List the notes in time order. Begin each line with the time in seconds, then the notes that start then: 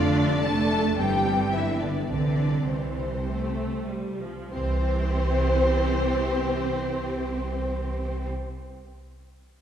Already playing: F1 D3 A3 D4 D5
0.44 A3 D4 A4 A5
0.98 G1 E3 G3 C4 G4 G5
1.53 G1 D3 E3 B3 E4 E5
1.80 D3 D4 D5
2.10 C2 D3 E3 C4 D4 D5
2.68 C3 E3 C4 C5
3.28 A3
3.89 G3
4.21 F3
4.52 C2 E3 C4 G4 C5